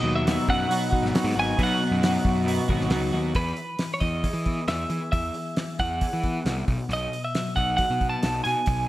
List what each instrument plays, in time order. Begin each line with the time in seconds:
Already playing: clean electric guitar B2 F#3 D#5, overdriven electric guitar B3 D#4 F#4
0.03 picked electric bass D#2, clean electric guitar B3 D#4 F#4
0.16 clean electric guitar E5
0.27 clean electric guitar B2 F#3 B3 D#4 F#4, snare, open hi-hat
0.48 picked electric bass F#2, clean electric guitar F#5, kick
0.68 overdriven electric guitar B2 F#3 B3 D#4 F#4, open hi-hat
0.93 clean electric guitar B3 D#4 F#4, kick
1.02 picked electric bass G#1, snare
1.14 clean electric guitar F#3 B3 D#4 F#4, snare, open hi-hat
1.24 picked electric bass G#2
1.36 picked electric bass G#1, clean electric guitar B3 D#4 F#4 G#5
1.59 clean electric guitar B2 F#3 B3 D#4 F#4, picked electric bass B2, kick, open hi-hat
1.63 clean electric guitar F#5
1.82 clean electric guitar B3 D#4 F#4
1.91 picked electric bass F#2
2.01 clean electric guitar B2, overdriven electric guitar F#3, snare, open hi-hat
2.05 clean electric guitar F#3 B3 D#4 F#4
2.25 picked electric bass F#2, kick
2.44 overdriven electric guitar B2 F#3 B3 D#4 F#4, open hi-hat
2.69 picked electric bass G#1, clean electric guitar B3 D#4 F#4, kick
2.81 snare
2.90 picked electric bass C#2, clean electric guitar F#3 B3 D#4 F#4, snare, open hi-hat
3.13 picked electric bass D#2, clean electric guitar B3 D#4 F#4
3.35 picked electric bass E2, clean electric guitar E3 B4, kick, open hi-hat
3.57 open hi-hat
3.79 clean electric guitar E3, snare, open hi-hat
3.94 clean electric guitar C#5
4.00 picked electric bass E2, clean electric guitar E4 D#5, kick, open hi-hat
4.24 clean electric guitar G#4, kick, open hi-hat
4.33 picked electric bass E3
4.46 clean electric guitar B3, kick, open hi-hat
4.68 picked electric bass E2, clean electric guitar E4 E5, snare, open hi-hat
4.90 picked electric bass E3, clean electric guitar G#4, open hi-hat
5.12 picked electric bass E2, clean electric guitar E3 E5, kick, open hi-hat
5.34 open hi-hat
5.57 clean electric guitar E3, snare, open hi-hat
5.79 picked electric bass E2, clean electric guitar E4 F#5, kick, open hi-hat
6.01 clean electric guitar G#4, kick, open hi-hat
6.13 picked electric bass E3
6.23 clean electric guitar B3, kick, open hi-hat
6.45 picked electric bass C2, clean electric guitar E4, snare, open hi-hat
6.68 picked electric bass B1, clean electric guitar B2, kick, open hi-hat
6.89 picked electric bass B1, clean electric guitar B2, open hi-hat
6.93 clean electric guitar D#5
7.13 open hi-hat
7.25 clean electric guitar E5
7.35 clean electric guitar F#3, snare, open hi-hat
7.56 picked electric bass B1, clean electric guitar D#4 F#5, kick, open hi-hat
7.77 clean electric guitar F#4 F#5, kick, open hi-hat
7.90 picked electric bass B2
8.00 clean electric guitar B3, kick, open hi-hat
8.10 clean electric guitar A5
8.22 picked electric bass B1, clean electric guitar D#4, snare, open hi-hat
8.44 picked electric bass B2, clean electric guitar F#4 G#5, open hi-hat
8.66 picked electric bass B1, clean electric guitar B2, kick, open hi-hat